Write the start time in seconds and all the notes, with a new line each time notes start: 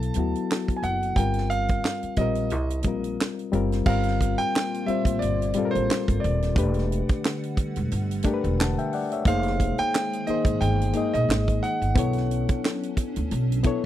Already playing: F#3 B3 E4 A4 A5
0.02 closed hi-hat
0.14 D2 F#3 B3 E4, closed hi-hat
0.19 F#4
0.35 closed hi-hat
0.52 snare, clap
0.68 kick, closed hi-hat
0.77 G#5
0.83 F#1 F#5, closed hi-hat
1.03 closed hi-hat
1.16 G1 G3 C4 F4 A#4 G5, kick, closed hi-hat
1.34 closed hi-hat
1.38 snare
1.50 F5, closed hi-hat
1.68 kick, closed hi-hat
1.85 snare, clap
2.03 muted upright bass stroke, closed hi-hat
2.16 A#1 G3 C4 F4 D#5, kick, closed hi-hat
2.21 A#4
2.35 closed hi-hat
2.50 C2, closed hi-hat
2.70 closed hi-hat
2.83 A#1 G3 C4, kick, closed hi-hat
2.87 F4 A#4
3.04 closed hi-hat
3.21 snare, clap
3.39 closed hi-hat
3.52 F#1 G3 C4 F4 A#4, closed hi-hat
3.72 snare, closed hi-hat
3.86 G1 A#2 G3 A#3 C4 F4 A#4 F5, kick, crash
4.03 closed hi-hat
4.08 snare
4.21 kick, closed hi-hat
4.38 G5, closed hi-hat
4.56 snare, clap
4.74 closed hi-hat
4.86 G3 C4 F4 C5 E5, muted upright bass stroke, closed hi-hat
5.05 A1, kick, closed hi-hat
5.19 G1 D5, closed hi-hat
5.42 closed hi-hat
5.53 G3 C4 F4, closed hi-hat
5.58 A4
5.65 A#4
5.71 C5
5.75 A1, closed hi-hat
5.91 snare, clap
6.08 G1, kick, closed hi-hat
6.20 D5, closed hi-hat
6.24 D#1
6.42 snare, closed hi-hat
6.55 E1 D3 G3 A3 D4 G4 B4 F#5, kick, closed hi-hat
6.74 closed hi-hat
6.78 snare
6.92 closed hi-hat
7.09 kick, closed hi-hat
7.25 snare, clap
7.43 closed hi-hat
7.57 muted upright bass stroke, kick, closed hi-hat
7.76 E1, closed hi-hat
7.91 G1, closed hi-hat
8.11 closed hi-hat
8.23 A3 D4 G4, kick, closed hi-hat
8.28 A#4
8.34 B4
8.44 E1, closed hi-hat
8.60 F#5 A5, snare, clap
8.79 E5 G5, closed hi-hat
8.93 D5 F#5, open hi-hat
9.12 C#5 E5, closed hi-hat
9.25 F1 D#3 G#3 A#3 D#4 G#4 F5, kick, closed hi-hat
9.29 C5
9.43 closed hi-hat
9.47 snare
9.60 kick, closed hi-hat
9.78 G5, muted upright bass stroke, closed hi-hat
9.95 snare, clap
10.13 closed hi-hat
10.27 A#3 D#4 G#4 C5 D#5, muted upright bass stroke, closed hi-hat
10.45 G#1, kick, closed hi-hat
10.61 G1 G5, closed hi-hat
10.81 closed hi-hat
10.93 A#3 D#4 G#4 D#5, closed hi-hat
11.14 A#1 D#5, closed hi-hat
11.29 G#1, snare, clap
11.48 kick, closed hi-hat
11.63 F#5, closed hi-hat
11.82 G1, closed hi-hat
11.95 B1 F#3 B3 C#4 D4 E4 A4, kick, closed hi-hat
11.99 C#5
12.13 closed hi-hat
12.17 snare
12.31 closed hi-hat
12.49 muted upright bass stroke, kick, closed hi-hat
12.65 snare, clap
12.83 closed hi-hat
12.97 muted upright bass stroke, kick, closed hi-hat
13.16 D2, closed hi-hat
13.31 B1, closed hi-hat
13.52 closed hi-hat
13.63 B3 E4 A4 C#5, kick, closed hi-hat